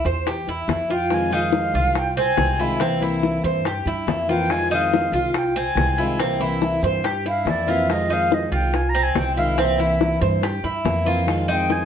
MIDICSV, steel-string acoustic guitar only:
0, 0, Header, 1, 3, 480
1, 0, Start_track
1, 0, Key_signature, -4, "minor"
1, 0, Tempo, 423430
1, 1259, Time_signature, 4, 2, 24, 8
1, 13433, End_track
2, 0, Start_track
2, 0, Title_t, "Steel-string acoustic guitar"
2, 0, Program_c, 0, 25
2, 1251, Note_on_c, 0, 48, 78
2, 1257, Note_on_c, 0, 51, 75
2, 1262, Note_on_c, 0, 56, 67
2, 1268, Note_on_c, 0, 60, 77
2, 1278, Note_on_c, 0, 65, 77
2, 1474, Note_off_c, 0, 65, 0
2, 1485, Note_off_c, 0, 48, 0
2, 1485, Note_off_c, 0, 60, 0
2, 1488, Note_on_c, 0, 65, 62
2, 1489, Note_off_c, 0, 51, 0
2, 1491, Note_off_c, 0, 56, 0
2, 1498, Note_on_c, 0, 60, 54
2, 1504, Note_on_c, 0, 56, 61
2, 1510, Note_on_c, 0, 51, 54
2, 2198, Note_off_c, 0, 51, 0
2, 2204, Note_off_c, 0, 56, 0
2, 2204, Note_off_c, 0, 65, 0
2, 2214, Note_off_c, 0, 60, 0
2, 2696, Note_on_c, 0, 51, 48
2, 2704, Note_on_c, 0, 56, 42
2, 2712, Note_on_c, 0, 60, 50
2, 2721, Note_on_c, 0, 65, 50
2, 2924, Note_off_c, 0, 65, 0
2, 2928, Note_off_c, 0, 51, 0
2, 2932, Note_off_c, 0, 56, 0
2, 2936, Note_off_c, 0, 60, 0
2, 2938, Note_on_c, 0, 65, 69
2, 2951, Note_on_c, 0, 60, 67
2, 2955, Note_on_c, 0, 56, 62
2, 2963, Note_on_c, 0, 51, 59
2, 3168, Note_off_c, 0, 65, 0
2, 3175, Note_off_c, 0, 60, 0
2, 3177, Note_off_c, 0, 56, 0
2, 3177, Note_on_c, 0, 48, 71
2, 3178, Note_off_c, 0, 51, 0
2, 3183, Note_on_c, 0, 52, 76
2, 3190, Note_on_c, 0, 58, 73
2, 3192, Note_on_c, 0, 60, 76
2, 3198, Note_on_c, 0, 64, 80
2, 3395, Note_off_c, 0, 64, 0
2, 3406, Note_off_c, 0, 60, 0
2, 3408, Note_off_c, 0, 48, 0
2, 3408, Note_on_c, 0, 64, 65
2, 3411, Note_off_c, 0, 52, 0
2, 3414, Note_off_c, 0, 58, 0
2, 3420, Note_on_c, 0, 60, 56
2, 3426, Note_on_c, 0, 58, 57
2, 3437, Note_on_c, 0, 52, 57
2, 4123, Note_off_c, 0, 64, 0
2, 4132, Note_off_c, 0, 58, 0
2, 4137, Note_off_c, 0, 52, 0
2, 4149, Note_off_c, 0, 60, 0
2, 4613, Note_on_c, 0, 52, 49
2, 4624, Note_on_c, 0, 58, 48
2, 4633, Note_on_c, 0, 60, 48
2, 4642, Note_on_c, 0, 64, 52
2, 4838, Note_off_c, 0, 64, 0
2, 4846, Note_off_c, 0, 52, 0
2, 4851, Note_off_c, 0, 58, 0
2, 4851, Note_off_c, 0, 60, 0
2, 4851, Note_on_c, 0, 64, 69
2, 4865, Note_on_c, 0, 60, 71
2, 4871, Note_on_c, 0, 58, 66
2, 4876, Note_on_c, 0, 52, 60
2, 5085, Note_off_c, 0, 64, 0
2, 5091, Note_off_c, 0, 60, 0
2, 5094, Note_off_c, 0, 58, 0
2, 5096, Note_on_c, 0, 48, 72
2, 5097, Note_off_c, 0, 52, 0
2, 5108, Note_on_c, 0, 51, 69
2, 5113, Note_on_c, 0, 56, 71
2, 5119, Note_on_c, 0, 60, 72
2, 5122, Note_on_c, 0, 65, 83
2, 5316, Note_off_c, 0, 65, 0
2, 5325, Note_off_c, 0, 60, 0
2, 5327, Note_off_c, 0, 48, 0
2, 5330, Note_on_c, 0, 65, 64
2, 5333, Note_off_c, 0, 51, 0
2, 5333, Note_off_c, 0, 56, 0
2, 5339, Note_on_c, 0, 60, 59
2, 5347, Note_on_c, 0, 56, 58
2, 5354, Note_on_c, 0, 51, 55
2, 6043, Note_off_c, 0, 65, 0
2, 6047, Note_off_c, 0, 51, 0
2, 6049, Note_off_c, 0, 56, 0
2, 6062, Note_off_c, 0, 60, 0
2, 6544, Note_on_c, 0, 51, 42
2, 6552, Note_on_c, 0, 56, 42
2, 6561, Note_on_c, 0, 60, 52
2, 6570, Note_on_c, 0, 65, 48
2, 6770, Note_off_c, 0, 51, 0
2, 6775, Note_off_c, 0, 56, 0
2, 6775, Note_off_c, 0, 65, 0
2, 6779, Note_off_c, 0, 60, 0
2, 6789, Note_on_c, 0, 65, 75
2, 6800, Note_on_c, 0, 60, 62
2, 6805, Note_on_c, 0, 56, 61
2, 6814, Note_on_c, 0, 51, 64
2, 7013, Note_off_c, 0, 65, 0
2, 7017, Note_on_c, 0, 48, 67
2, 7019, Note_off_c, 0, 51, 0
2, 7019, Note_off_c, 0, 60, 0
2, 7021, Note_off_c, 0, 56, 0
2, 7024, Note_on_c, 0, 52, 80
2, 7031, Note_on_c, 0, 58, 73
2, 7037, Note_on_c, 0, 60, 68
2, 7044, Note_on_c, 0, 64, 80
2, 7237, Note_off_c, 0, 64, 0
2, 7247, Note_off_c, 0, 48, 0
2, 7249, Note_off_c, 0, 60, 0
2, 7250, Note_off_c, 0, 52, 0
2, 7251, Note_on_c, 0, 64, 62
2, 7254, Note_off_c, 0, 58, 0
2, 7263, Note_on_c, 0, 60, 63
2, 7269, Note_on_c, 0, 58, 58
2, 7276, Note_on_c, 0, 52, 53
2, 7960, Note_off_c, 0, 52, 0
2, 7963, Note_off_c, 0, 58, 0
2, 7964, Note_off_c, 0, 64, 0
2, 7974, Note_off_c, 0, 60, 0
2, 8448, Note_on_c, 0, 52, 46
2, 8455, Note_on_c, 0, 58, 51
2, 8468, Note_on_c, 0, 60, 56
2, 8474, Note_on_c, 0, 64, 49
2, 8678, Note_off_c, 0, 64, 0
2, 8682, Note_off_c, 0, 52, 0
2, 8685, Note_off_c, 0, 60, 0
2, 8686, Note_off_c, 0, 58, 0
2, 8692, Note_on_c, 0, 64, 68
2, 8699, Note_on_c, 0, 60, 67
2, 8711, Note_on_c, 0, 58, 60
2, 8720, Note_on_c, 0, 52, 55
2, 8924, Note_off_c, 0, 64, 0
2, 8928, Note_off_c, 0, 60, 0
2, 8934, Note_off_c, 0, 58, 0
2, 8936, Note_on_c, 0, 48, 67
2, 8938, Note_off_c, 0, 52, 0
2, 8944, Note_on_c, 0, 51, 69
2, 8948, Note_on_c, 0, 56, 75
2, 8956, Note_on_c, 0, 60, 69
2, 8964, Note_on_c, 0, 65, 79
2, 9163, Note_off_c, 0, 65, 0
2, 9166, Note_off_c, 0, 48, 0
2, 9170, Note_off_c, 0, 51, 0
2, 9172, Note_off_c, 0, 56, 0
2, 9176, Note_off_c, 0, 60, 0
2, 9177, Note_on_c, 0, 65, 68
2, 9189, Note_on_c, 0, 60, 57
2, 9193, Note_on_c, 0, 56, 51
2, 9206, Note_on_c, 0, 51, 47
2, 9886, Note_off_c, 0, 65, 0
2, 9889, Note_off_c, 0, 51, 0
2, 9891, Note_off_c, 0, 56, 0
2, 9905, Note_off_c, 0, 60, 0
2, 10377, Note_on_c, 0, 51, 46
2, 10388, Note_on_c, 0, 56, 48
2, 10397, Note_on_c, 0, 60, 51
2, 10402, Note_on_c, 0, 65, 51
2, 10602, Note_off_c, 0, 65, 0
2, 10607, Note_off_c, 0, 51, 0
2, 10612, Note_off_c, 0, 56, 0
2, 10614, Note_off_c, 0, 60, 0
2, 10615, Note_on_c, 0, 65, 66
2, 10628, Note_on_c, 0, 60, 67
2, 10635, Note_on_c, 0, 56, 65
2, 10642, Note_on_c, 0, 51, 61
2, 10844, Note_on_c, 0, 48, 66
2, 10846, Note_off_c, 0, 65, 0
2, 10850, Note_off_c, 0, 51, 0
2, 10850, Note_off_c, 0, 56, 0
2, 10850, Note_off_c, 0, 60, 0
2, 10854, Note_on_c, 0, 52, 67
2, 10854, Note_on_c, 0, 58, 76
2, 10863, Note_on_c, 0, 60, 75
2, 10872, Note_on_c, 0, 64, 70
2, 11067, Note_off_c, 0, 64, 0
2, 11076, Note_off_c, 0, 60, 0
2, 11080, Note_off_c, 0, 48, 0
2, 11080, Note_on_c, 0, 64, 67
2, 11085, Note_off_c, 0, 52, 0
2, 11085, Note_off_c, 0, 58, 0
2, 11089, Note_on_c, 0, 60, 60
2, 11100, Note_on_c, 0, 58, 58
2, 11102, Note_on_c, 0, 52, 50
2, 11793, Note_off_c, 0, 52, 0
2, 11799, Note_off_c, 0, 64, 0
2, 11801, Note_off_c, 0, 58, 0
2, 11815, Note_off_c, 0, 60, 0
2, 12295, Note_on_c, 0, 52, 51
2, 12304, Note_on_c, 0, 58, 50
2, 12309, Note_on_c, 0, 60, 52
2, 12317, Note_on_c, 0, 64, 50
2, 12514, Note_off_c, 0, 64, 0
2, 12521, Note_off_c, 0, 60, 0
2, 12526, Note_off_c, 0, 52, 0
2, 12528, Note_on_c, 0, 64, 72
2, 12531, Note_off_c, 0, 58, 0
2, 12535, Note_on_c, 0, 60, 71
2, 12546, Note_on_c, 0, 58, 59
2, 12553, Note_on_c, 0, 52, 60
2, 12757, Note_on_c, 0, 48, 74
2, 12760, Note_off_c, 0, 52, 0
2, 12763, Note_off_c, 0, 64, 0
2, 12765, Note_on_c, 0, 51, 72
2, 12766, Note_off_c, 0, 60, 0
2, 12769, Note_off_c, 0, 58, 0
2, 12773, Note_on_c, 0, 56, 73
2, 12780, Note_on_c, 0, 60, 72
2, 12788, Note_on_c, 0, 65, 67
2, 12997, Note_off_c, 0, 48, 0
2, 12999, Note_off_c, 0, 65, 0
2, 13001, Note_off_c, 0, 51, 0
2, 13006, Note_off_c, 0, 56, 0
2, 13009, Note_off_c, 0, 60, 0
2, 13013, Note_on_c, 0, 65, 65
2, 13021, Note_on_c, 0, 60, 68
2, 13034, Note_on_c, 0, 56, 62
2, 13038, Note_on_c, 0, 51, 55
2, 13433, Note_off_c, 0, 51, 0
2, 13433, Note_off_c, 0, 56, 0
2, 13433, Note_off_c, 0, 60, 0
2, 13433, Note_off_c, 0, 65, 0
2, 13433, End_track
3, 0, Start_track
3, 0, Title_t, "Muted steel-string acoustic guitar strokes"
3, 2212, Note_on_c, 9, 29, 59
3, 2325, Note_off_c, 9, 29, 0
3, 4141, Note_on_c, 9, 29, 63
3, 4255, Note_off_c, 9, 29, 0
3, 6054, Note_on_c, 9, 29, 64
3, 6168, Note_off_c, 9, 29, 0
3, 7969, Note_on_c, 9, 29, 58
3, 8082, Note_off_c, 9, 29, 0
3, 9895, Note_on_c, 9, 29, 60
3, 10009, Note_off_c, 9, 29, 0
3, 11807, Note_on_c, 9, 29, 64
3, 11920, Note_off_c, 9, 29, 0
3, 13433, End_track
0, 0, End_of_file